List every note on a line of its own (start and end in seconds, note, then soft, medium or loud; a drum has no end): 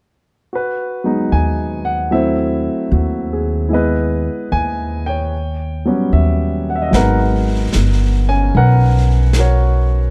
0.53 2.08 F#4 soft
0.53 1.29 B4 medium
1.04 2.09 F#3 soft
1.04 2.12 G#3 soft
1.04 2.12 B3 soft
1.04 2.12 D#4 soft
1.32 2.67 D#2 medium
1.32 1.87 G#5 medium
1.85 2.12 F#5 medium
2.11 3.72 F#3 soft
2.11 3.72 A3 soft
2.11 3.72 C4 soft
2.11 3.67 E4 soft
2.11 3.69 C5 soft
2.11 2.88 E5 medium
2.91 4.27 D#2 medium
2.91 3.55 F#4 soft
3.33 3.88 G#4 soft
3.69 5.31 G#3 soft
3.69 5.32 B3 soft
3.69 3.73 E4 soft
3.73 5.29 E4 soft
3.73 4.56 B4 medium
3.73 5.33 D#5 soft
4.52 5.87 D#2 medium
4.52 5.08 G#5 medium
5.06 6.64 C#5 medium
5.06 6.63 G5 medium
5.85 6.89 F#3 soft
5.85 6.93 G3 soft
5.85 6.93 B3 soft
5.85 6.93 C#4 soft
6.12 6.89 D#2 medium
6.12 6.71 E5 medium
6.70 6.75 F#5 medium
6.76 6.81 E5 medium
6.82 6.87 D#5 medium
6.87 6.93 E5 medium
6.91 7.69 G#1 medium
6.91 10.10 F#3 soft
6.91 10.10 G#3 soft
6.91 10.10 B3 soft
6.91 8.50 B4 medium
6.91 7.69 F#5 medium
6.91 brush sweep soft
6.91 snare soft
6.96 10.10 D#4 soft
6.96 8.51 A#4 medium
7.73 8.50 G1 medium
7.73 snare soft
7.73 hi-hat pedal soft
8.29 10.10 C#4 soft
8.29 8.55 G#5 medium
8.54 10.10 B1 medium
8.54 9.37 A#4 medium
8.54 10.10 B4 medium
8.54 9.31 F#5 medium
8.54 brush sweep soft
9.33 snare soft
9.33 hi-hat pedal soft
9.38 10.10 F#4 medium
9.38 10.10 A#4 soft
9.38 10.10 C#5 medium